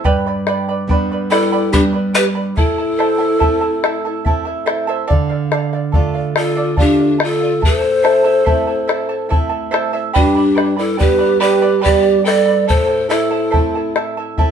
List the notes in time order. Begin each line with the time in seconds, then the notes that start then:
0.04 G2 G4 B4 D5 G5 B5, bombo low
0.26 B4 D5 B5, bombo rim
0.47 B4 D5 G5 B5, bombo rim
0.68 B4 D5 B5, bombo rim
0.88 G3 B3 D4 B4 D5 G5 B5, bombo low
1.12 B4 D5 B5
1.30 E4 G4 A4 B4 D5 G5 B5, bombo rim
1.52 G4 B4 D5 G5 B5
1.73 G3 B3 D4 G4 B4 D5 G5 B5, bombo low
1.93 B4 D5 B5
2.13 G4 B4 D5 G5 B5, bombo rim
2.35 B4 D5 B5
2.56 A2 E4 A4 E5 A5, bombo rim, bombo low
2.78 E4 A4 A5
2.98 E4 A4 C5 E5 A5, bombo rim
3.18 E4 A4 C5 E5 A5
3.39 A3 C4 E4 A4 C5 E5 A5, bombo low
3.61 E4 A4 A5
3.84 E4 A4 E5 A5, bombo rim
4.05 E4 A4 A5
4.25 A3 C4 E4 A4 E5 A5, bombo low
4.45 E4 A4 A5, bombo rim
4.66 E4 A4 C5 E5 A5, bombo rim
4.87 E4 A4 C5 E5 A5, bombo rim
5.07 D3 A4 D5 F5, bombo low
5.29 D5 F5, bombo rim
5.51 A4 D5 F5, bombo rim
5.73 D5 F5, bombo rim
5.92 A3 D4 F4 A4 D5 F5, bombo low
6.14 D5 F5
6.36 F4 A4 D5 F5, bombo rim
6.56 A4 D5 F5
6.77 A3 D4 F4 G4 A4 D5 F5, bombo low
6.97 D5 F5
7.18 A4 D5 F5, bombo rim
7.23 F4 A4
7.40 D5 F5
7.61 A2 E4 A4 E5 A5, bombo low
7.65 C5
7.82 E4 A4 A5, bombo rim
8.03 E4 A4 C5 E5 A5, bombo rim
8.24 E4 A4 C5 E5 A5, bombo rim
8.45 A3 C4 E4 A4 C5 E5 A5, bombo low
8.67 E4 A4 A5
8.88 E4 A4 E5 A5, bombo rim
9.09 E4 A4 A5
9.29 A3 C4 E4 A4 E5 A5, bombo low
9.49 E4 A4 A5
9.71 E4 A4 C5 E5 A5, bombo rim
9.93 E4 A4 C5 E5 A5
10.13 G2 D4 G4 B4 D5 G5 B5, bombo low
10.35 B4 D5 B5, bombo rim
10.55 B4 D5 G5 B5, bombo rim
10.77 E4 A4 B4 D5 B5, bombo rim
10.97 G3 B3 D4 G4 B4 D5 G5 B5, bombo low
11.18 B4 D5 B5
11.40 G4 B4 D5 G5 B5
11.62 G4 B4 D5 G5 B5
11.81 G4 B4 D5 G5 B5
11.85 G3 B3 D4, bombo low
12.02 B4 D5 B5
12.24 A4 B4 D5 G5 B5, bombo rim
12.46 B4 D5 B5
12.67 A2 E4 A4 C5 E5 A5, bombo rim, bombo low
12.88 E4 A4 A5
13.09 E4 A4 C5 E5 A5, bombo rim
13.31 E4 A4 C5 E5 A5
13.51 A3 C4 E4 A4 C5 E5 A5, bombo low
13.55 E4
13.75 E4 A4 A5, bombo rim
13.96 E4 A4 E5 A5, bombo rim
14.17 E4 A4 A5
14.38 A3 C4 E4 A4 E5 A5, bombo rim, bombo low